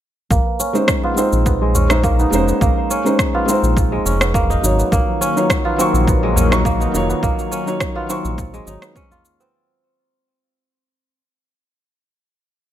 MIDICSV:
0, 0, Header, 1, 7, 480
1, 0, Start_track
1, 0, Key_signature, -5, "minor"
1, 0, Tempo, 576923
1, 254, Time_signature, 4, 2, 24, 8
1, 10588, End_track
2, 0, Start_track
2, 0, Title_t, "Felt piano"
2, 0, Program_c, 0, 0
2, 610, Note_on_c, 0, 56, 80
2, 616, Note_on_c, 0, 61, 70
2, 621, Note_on_c, 0, 63, 68
2, 626, Note_on_c, 0, 72, 85
2, 940, Note_off_c, 0, 56, 0
2, 944, Note_off_c, 0, 61, 0
2, 947, Note_off_c, 0, 63, 0
2, 949, Note_off_c, 0, 72, 0
2, 953, Note_on_c, 0, 56, 80
2, 976, Note_on_c, 0, 63, 75
2, 986, Note_on_c, 0, 72, 92
2, 1541, Note_off_c, 0, 56, 0
2, 1552, Note_off_c, 0, 63, 0
2, 1557, Note_off_c, 0, 72, 0
2, 1572, Note_on_c, 0, 56, 98
2, 1584, Note_on_c, 0, 63, 90
2, 1590, Note_on_c, 0, 72, 99
2, 1902, Note_off_c, 0, 56, 0
2, 1908, Note_off_c, 0, 63, 0
2, 1911, Note_off_c, 0, 72, 0
2, 1920, Note_on_c, 0, 56, 97
2, 1932, Note_on_c, 0, 61, 90
2, 1942, Note_on_c, 0, 63, 91
2, 1952, Note_on_c, 0, 72, 103
2, 2504, Note_off_c, 0, 56, 0
2, 2510, Note_off_c, 0, 61, 0
2, 2515, Note_off_c, 0, 63, 0
2, 2520, Note_off_c, 0, 72, 0
2, 2532, Note_on_c, 0, 56, 88
2, 2537, Note_on_c, 0, 61, 75
2, 2542, Note_on_c, 0, 63, 78
2, 2548, Note_on_c, 0, 72, 96
2, 2862, Note_off_c, 0, 56, 0
2, 2865, Note_off_c, 0, 61, 0
2, 2867, Note_off_c, 0, 63, 0
2, 2870, Note_off_c, 0, 72, 0
2, 2875, Note_on_c, 0, 56, 87
2, 2899, Note_on_c, 0, 63, 78
2, 2910, Note_on_c, 0, 72, 89
2, 3818, Note_off_c, 0, 56, 0
2, 3830, Note_off_c, 0, 63, 0
2, 3835, Note_off_c, 0, 72, 0
2, 3836, Note_on_c, 0, 54, 76
2, 3853, Note_on_c, 0, 63, 70
2, 3871, Note_on_c, 0, 73, 86
2, 4422, Note_off_c, 0, 54, 0
2, 4431, Note_off_c, 0, 63, 0
2, 4440, Note_off_c, 0, 73, 0
2, 4456, Note_on_c, 0, 54, 80
2, 4463, Note_on_c, 0, 63, 75
2, 4472, Note_on_c, 0, 73, 91
2, 4784, Note_off_c, 0, 54, 0
2, 4788, Note_off_c, 0, 63, 0
2, 4792, Note_off_c, 0, 73, 0
2, 4798, Note_on_c, 0, 54, 88
2, 4814, Note_on_c, 0, 63, 79
2, 4831, Note_on_c, 0, 85, 96
2, 5383, Note_off_c, 0, 54, 0
2, 5391, Note_off_c, 0, 63, 0
2, 5400, Note_off_c, 0, 85, 0
2, 5414, Note_on_c, 0, 54, 96
2, 5423, Note_on_c, 0, 63, 93
2, 5430, Note_on_c, 0, 85, 106
2, 5743, Note_off_c, 0, 54, 0
2, 5747, Note_off_c, 0, 63, 0
2, 5751, Note_off_c, 0, 85, 0
2, 5759, Note_on_c, 0, 54, 101
2, 5774, Note_on_c, 0, 63, 90
2, 5790, Note_on_c, 0, 73, 106
2, 6344, Note_off_c, 0, 54, 0
2, 6351, Note_off_c, 0, 63, 0
2, 6359, Note_off_c, 0, 73, 0
2, 6373, Note_on_c, 0, 54, 90
2, 6381, Note_on_c, 0, 63, 80
2, 6389, Note_on_c, 0, 73, 101
2, 6703, Note_off_c, 0, 54, 0
2, 6707, Note_off_c, 0, 63, 0
2, 6711, Note_off_c, 0, 73, 0
2, 6725, Note_on_c, 0, 54, 90
2, 6734, Note_on_c, 0, 63, 84
2, 6741, Note_on_c, 0, 85, 98
2, 7187, Note_off_c, 0, 54, 0
2, 7192, Note_off_c, 0, 63, 0
2, 7195, Note_off_c, 0, 85, 0
2, 7202, Note_on_c, 0, 54, 88
2, 7212, Note_on_c, 0, 63, 75
2, 7219, Note_on_c, 0, 73, 92
2, 7437, Note_off_c, 0, 54, 0
2, 7442, Note_off_c, 0, 63, 0
2, 7446, Note_off_c, 0, 73, 0
2, 10588, End_track
3, 0, Start_track
3, 0, Title_t, "Kora"
3, 0, Program_c, 1, 46
3, 257, Note_on_c, 1, 58, 70
3, 495, Note_on_c, 1, 61, 71
3, 865, Note_on_c, 1, 65, 71
3, 978, Note_on_c, 1, 60, 67
3, 1028, Note_off_c, 1, 61, 0
3, 1344, Note_on_c, 1, 56, 67
3, 1455, Note_on_c, 1, 61, 70
3, 1505, Note_off_c, 1, 60, 0
3, 1692, Note_off_c, 1, 58, 0
3, 1695, Note_on_c, 1, 58, 76
3, 1824, Note_on_c, 1, 63, 69
3, 2124, Note_off_c, 1, 65, 0
3, 2171, Note_off_c, 1, 58, 0
3, 2175, Note_on_c, 1, 58, 72
3, 2413, Note_off_c, 1, 61, 0
3, 2417, Note_on_c, 1, 61, 73
3, 2782, Note_on_c, 1, 65, 73
3, 2894, Note_on_c, 1, 60, 64
3, 2944, Note_off_c, 1, 61, 0
3, 3174, Note_off_c, 1, 63, 0
3, 3252, Note_off_c, 1, 56, 0
3, 3262, Note_on_c, 1, 56, 67
3, 3376, Note_on_c, 1, 61, 65
3, 3426, Note_off_c, 1, 60, 0
3, 3609, Note_off_c, 1, 58, 0
3, 3613, Note_on_c, 1, 58, 78
3, 3744, Note_on_c, 1, 63, 69
3, 4041, Note_off_c, 1, 65, 0
3, 4093, Note_off_c, 1, 58, 0
3, 4096, Note_on_c, 1, 58, 71
3, 4136, Note_off_c, 1, 56, 0
3, 4331, Note_off_c, 1, 61, 0
3, 4335, Note_on_c, 1, 61, 77
3, 4700, Note_on_c, 1, 65, 67
3, 4812, Note_on_c, 1, 60, 71
3, 4862, Note_off_c, 1, 61, 0
3, 5093, Note_off_c, 1, 63, 0
3, 5183, Note_on_c, 1, 56, 68
3, 5293, Note_on_c, 1, 61, 67
3, 5343, Note_off_c, 1, 60, 0
3, 5529, Note_off_c, 1, 58, 0
3, 5532, Note_on_c, 1, 58, 84
3, 5661, Note_on_c, 1, 63, 70
3, 5959, Note_off_c, 1, 65, 0
3, 6009, Note_off_c, 1, 58, 0
3, 6013, Note_on_c, 1, 58, 75
3, 6248, Note_off_c, 1, 61, 0
3, 6252, Note_on_c, 1, 61, 72
3, 6622, Note_on_c, 1, 65, 73
3, 6733, Note_on_c, 1, 60, 69
3, 6783, Note_off_c, 1, 61, 0
3, 7011, Note_off_c, 1, 63, 0
3, 7092, Note_off_c, 1, 56, 0
3, 7102, Note_on_c, 1, 56, 73
3, 7216, Note_on_c, 1, 63, 71
3, 7456, Note_on_c, 1, 61, 83
3, 7506, Note_off_c, 1, 60, 0
3, 7579, Note_off_c, 1, 65, 0
3, 7583, Note_on_c, 1, 65, 72
3, 7618, Note_off_c, 1, 58, 0
3, 7822, Note_on_c, 1, 60, 72
3, 7872, Note_off_c, 1, 61, 0
3, 7976, Note_off_c, 1, 56, 0
3, 8565, Note_off_c, 1, 63, 0
3, 8842, Note_off_c, 1, 65, 0
3, 9320, Note_off_c, 1, 60, 0
3, 10588, End_track
4, 0, Start_track
4, 0, Title_t, "Analog synth pad"
4, 0, Program_c, 2, 89
4, 4095, Note_on_c, 2, 51, 82
4, 4096, Note_on_c, 2, 54, 88
4, 4096, Note_on_c, 2, 58, 72
4, 4096, Note_on_c, 2, 65, 71
4, 7901, Note_off_c, 2, 51, 0
4, 7902, Note_off_c, 2, 54, 0
4, 7902, Note_off_c, 2, 58, 0
4, 7902, Note_off_c, 2, 65, 0
4, 10588, End_track
5, 0, Start_track
5, 0, Title_t, "Analog synth bass"
5, 0, Program_c, 3, 38
5, 254, Note_on_c, 3, 34, 97
5, 343, Note_off_c, 3, 34, 0
5, 1104, Note_on_c, 3, 34, 92
5, 1881, Note_off_c, 3, 34, 0
5, 1934, Note_on_c, 3, 29, 83
5, 2106, Note_off_c, 3, 29, 0
5, 2173, Note_on_c, 3, 34, 101
5, 2263, Note_off_c, 3, 34, 0
5, 3020, Note_on_c, 3, 34, 91
5, 3319, Note_off_c, 3, 34, 0
5, 3374, Note_on_c, 3, 29, 101
5, 3800, Note_off_c, 3, 29, 0
5, 3855, Note_on_c, 3, 32, 92
5, 4026, Note_off_c, 3, 32, 0
5, 4095, Note_on_c, 3, 34, 97
5, 4184, Note_off_c, 3, 34, 0
5, 4940, Note_on_c, 3, 34, 101
5, 5719, Note_off_c, 3, 34, 0
5, 5774, Note_on_c, 3, 29, 85
5, 5946, Note_off_c, 3, 29, 0
5, 6014, Note_on_c, 3, 34, 102
5, 6103, Note_off_c, 3, 34, 0
5, 6862, Note_on_c, 3, 34, 95
5, 7160, Note_off_c, 3, 34, 0
5, 7212, Note_on_c, 3, 32, 102
5, 7302, Note_off_c, 3, 32, 0
5, 10588, End_track
6, 0, Start_track
6, 0, Title_t, "Tabla"
6, 384, Note_on_c, 9, 63, 53
6, 467, Note_off_c, 9, 63, 0
6, 624, Note_on_c, 9, 63, 45
6, 707, Note_off_c, 9, 63, 0
6, 862, Note_on_c, 9, 60, 70
6, 945, Note_off_c, 9, 60, 0
6, 973, Note_on_c, 9, 63, 50
6, 1056, Note_off_c, 9, 63, 0
6, 1216, Note_on_c, 9, 60, 62
6, 1299, Note_off_c, 9, 60, 0
6, 1461, Note_on_c, 9, 64, 94
6, 1544, Note_off_c, 9, 64, 0
6, 1829, Note_on_c, 9, 60, 68
6, 1912, Note_off_c, 9, 60, 0
6, 2060, Note_on_c, 9, 60, 63
6, 2143, Note_off_c, 9, 60, 0
6, 2300, Note_on_c, 9, 63, 50
6, 2383, Note_off_c, 9, 63, 0
6, 2548, Note_on_c, 9, 63, 46
6, 2631, Note_off_c, 9, 63, 0
6, 2786, Note_on_c, 9, 60, 70
6, 2869, Note_off_c, 9, 60, 0
6, 2904, Note_on_c, 9, 63, 51
6, 2987, Note_off_c, 9, 63, 0
6, 3505, Note_on_c, 9, 60, 56
6, 3588, Note_off_c, 9, 60, 0
6, 3742, Note_on_c, 9, 64, 78
6, 3825, Note_off_c, 9, 64, 0
6, 3983, Note_on_c, 9, 60, 57
6, 4066, Note_off_c, 9, 60, 0
6, 4223, Note_on_c, 9, 63, 49
6, 4306, Note_off_c, 9, 63, 0
6, 4474, Note_on_c, 9, 63, 48
6, 4557, Note_off_c, 9, 63, 0
6, 4702, Note_on_c, 9, 60, 76
6, 4785, Note_off_c, 9, 60, 0
6, 4823, Note_on_c, 9, 63, 44
6, 4907, Note_off_c, 9, 63, 0
6, 5061, Note_on_c, 9, 60, 57
6, 5144, Note_off_c, 9, 60, 0
6, 5292, Note_on_c, 9, 64, 101
6, 5375, Note_off_c, 9, 64, 0
6, 5660, Note_on_c, 9, 60, 67
6, 5743, Note_off_c, 9, 60, 0
6, 5903, Note_on_c, 9, 60, 71
6, 5987, Note_off_c, 9, 60, 0
6, 6389, Note_on_c, 9, 63, 45
6, 6472, Note_off_c, 9, 63, 0
6, 6619, Note_on_c, 9, 60, 81
6, 6702, Note_off_c, 9, 60, 0
6, 7338, Note_on_c, 9, 60, 55
6, 7421, Note_off_c, 9, 60, 0
6, 7579, Note_on_c, 9, 64, 83
6, 7662, Note_off_c, 9, 64, 0
6, 7825, Note_on_c, 9, 60, 67
6, 7908, Note_off_c, 9, 60, 0
6, 10588, End_track
7, 0, Start_track
7, 0, Title_t, "Drums"
7, 254, Note_on_c, 9, 36, 100
7, 260, Note_on_c, 9, 82, 41
7, 338, Note_off_c, 9, 36, 0
7, 343, Note_off_c, 9, 82, 0
7, 499, Note_on_c, 9, 82, 67
7, 582, Note_off_c, 9, 82, 0
7, 625, Note_on_c, 9, 82, 29
7, 708, Note_off_c, 9, 82, 0
7, 731, Note_on_c, 9, 37, 72
7, 734, Note_on_c, 9, 36, 100
7, 736, Note_on_c, 9, 82, 38
7, 814, Note_off_c, 9, 37, 0
7, 817, Note_off_c, 9, 36, 0
7, 819, Note_off_c, 9, 82, 0
7, 976, Note_on_c, 9, 82, 74
7, 1060, Note_off_c, 9, 82, 0
7, 1103, Note_on_c, 9, 82, 29
7, 1186, Note_off_c, 9, 82, 0
7, 1214, Note_on_c, 9, 36, 94
7, 1216, Note_on_c, 9, 82, 41
7, 1297, Note_off_c, 9, 36, 0
7, 1300, Note_off_c, 9, 82, 0
7, 1457, Note_on_c, 9, 82, 73
7, 1540, Note_off_c, 9, 82, 0
7, 1580, Note_on_c, 9, 37, 74
7, 1585, Note_on_c, 9, 82, 34
7, 1664, Note_off_c, 9, 37, 0
7, 1669, Note_off_c, 9, 82, 0
7, 1694, Note_on_c, 9, 36, 95
7, 1697, Note_on_c, 9, 82, 39
7, 1777, Note_off_c, 9, 36, 0
7, 1780, Note_off_c, 9, 82, 0
7, 1826, Note_on_c, 9, 82, 28
7, 1909, Note_off_c, 9, 82, 0
7, 1937, Note_on_c, 9, 82, 79
7, 2020, Note_off_c, 9, 82, 0
7, 2067, Note_on_c, 9, 82, 32
7, 2150, Note_off_c, 9, 82, 0
7, 2173, Note_on_c, 9, 36, 106
7, 2179, Note_on_c, 9, 82, 42
7, 2257, Note_off_c, 9, 36, 0
7, 2263, Note_off_c, 9, 82, 0
7, 2418, Note_on_c, 9, 82, 66
7, 2502, Note_off_c, 9, 82, 0
7, 2547, Note_on_c, 9, 82, 32
7, 2630, Note_off_c, 9, 82, 0
7, 2654, Note_on_c, 9, 36, 103
7, 2654, Note_on_c, 9, 37, 72
7, 2659, Note_on_c, 9, 82, 42
7, 2737, Note_off_c, 9, 36, 0
7, 2738, Note_off_c, 9, 37, 0
7, 2743, Note_off_c, 9, 82, 0
7, 2900, Note_on_c, 9, 82, 75
7, 2983, Note_off_c, 9, 82, 0
7, 3027, Note_on_c, 9, 82, 32
7, 3111, Note_off_c, 9, 82, 0
7, 3133, Note_on_c, 9, 36, 103
7, 3141, Note_on_c, 9, 82, 43
7, 3217, Note_off_c, 9, 36, 0
7, 3224, Note_off_c, 9, 82, 0
7, 3379, Note_on_c, 9, 82, 72
7, 3463, Note_off_c, 9, 82, 0
7, 3503, Note_on_c, 9, 37, 77
7, 3508, Note_on_c, 9, 82, 32
7, 3586, Note_off_c, 9, 37, 0
7, 3591, Note_off_c, 9, 82, 0
7, 3614, Note_on_c, 9, 36, 103
7, 3621, Note_on_c, 9, 82, 45
7, 3697, Note_off_c, 9, 36, 0
7, 3704, Note_off_c, 9, 82, 0
7, 3749, Note_on_c, 9, 82, 30
7, 3833, Note_off_c, 9, 82, 0
7, 3861, Note_on_c, 9, 82, 77
7, 3944, Note_off_c, 9, 82, 0
7, 3989, Note_on_c, 9, 82, 33
7, 4072, Note_off_c, 9, 82, 0
7, 4094, Note_on_c, 9, 36, 102
7, 4101, Note_on_c, 9, 82, 47
7, 4177, Note_off_c, 9, 36, 0
7, 4184, Note_off_c, 9, 82, 0
7, 4343, Note_on_c, 9, 82, 72
7, 4426, Note_off_c, 9, 82, 0
7, 4470, Note_on_c, 9, 82, 34
7, 4553, Note_off_c, 9, 82, 0
7, 4574, Note_on_c, 9, 36, 111
7, 4577, Note_on_c, 9, 37, 76
7, 4582, Note_on_c, 9, 82, 44
7, 4657, Note_off_c, 9, 36, 0
7, 4660, Note_off_c, 9, 37, 0
7, 4665, Note_off_c, 9, 82, 0
7, 4822, Note_on_c, 9, 82, 75
7, 4905, Note_off_c, 9, 82, 0
7, 4949, Note_on_c, 9, 82, 31
7, 5032, Note_off_c, 9, 82, 0
7, 5054, Note_on_c, 9, 36, 101
7, 5061, Note_on_c, 9, 82, 45
7, 5138, Note_off_c, 9, 36, 0
7, 5144, Note_off_c, 9, 82, 0
7, 5303, Note_on_c, 9, 82, 77
7, 5386, Note_off_c, 9, 82, 0
7, 5425, Note_on_c, 9, 37, 79
7, 5430, Note_on_c, 9, 82, 36
7, 5508, Note_off_c, 9, 37, 0
7, 5513, Note_off_c, 9, 82, 0
7, 5534, Note_on_c, 9, 36, 107
7, 5541, Note_on_c, 9, 82, 48
7, 5617, Note_off_c, 9, 36, 0
7, 5624, Note_off_c, 9, 82, 0
7, 5669, Note_on_c, 9, 82, 31
7, 5753, Note_off_c, 9, 82, 0
7, 5780, Note_on_c, 9, 82, 80
7, 5863, Note_off_c, 9, 82, 0
7, 5908, Note_on_c, 9, 82, 34
7, 5991, Note_off_c, 9, 82, 0
7, 6014, Note_on_c, 9, 36, 108
7, 6020, Note_on_c, 9, 82, 46
7, 6097, Note_off_c, 9, 36, 0
7, 6103, Note_off_c, 9, 82, 0
7, 6148, Note_on_c, 9, 82, 30
7, 6231, Note_off_c, 9, 82, 0
7, 6258, Note_on_c, 9, 82, 76
7, 6342, Note_off_c, 9, 82, 0
7, 6386, Note_on_c, 9, 82, 33
7, 6469, Note_off_c, 9, 82, 0
7, 6493, Note_on_c, 9, 37, 70
7, 6494, Note_on_c, 9, 36, 107
7, 6498, Note_on_c, 9, 82, 42
7, 6576, Note_off_c, 9, 37, 0
7, 6577, Note_off_c, 9, 36, 0
7, 6581, Note_off_c, 9, 82, 0
7, 6737, Note_on_c, 9, 82, 79
7, 6820, Note_off_c, 9, 82, 0
7, 6865, Note_on_c, 9, 82, 34
7, 6948, Note_off_c, 9, 82, 0
7, 6973, Note_on_c, 9, 36, 100
7, 6976, Note_on_c, 9, 82, 45
7, 7056, Note_off_c, 9, 36, 0
7, 7059, Note_off_c, 9, 82, 0
7, 7105, Note_on_c, 9, 82, 31
7, 7188, Note_off_c, 9, 82, 0
7, 7216, Note_on_c, 9, 82, 76
7, 7299, Note_off_c, 9, 82, 0
7, 7339, Note_on_c, 9, 37, 81
7, 7344, Note_on_c, 9, 82, 33
7, 7422, Note_off_c, 9, 37, 0
7, 7427, Note_off_c, 9, 82, 0
7, 7452, Note_on_c, 9, 36, 111
7, 7456, Note_on_c, 9, 82, 46
7, 7535, Note_off_c, 9, 36, 0
7, 7539, Note_off_c, 9, 82, 0
7, 7585, Note_on_c, 9, 82, 32
7, 7669, Note_off_c, 9, 82, 0
7, 7697, Note_on_c, 9, 82, 82
7, 7780, Note_off_c, 9, 82, 0
7, 7825, Note_on_c, 9, 82, 36
7, 7909, Note_off_c, 9, 82, 0
7, 10588, End_track
0, 0, End_of_file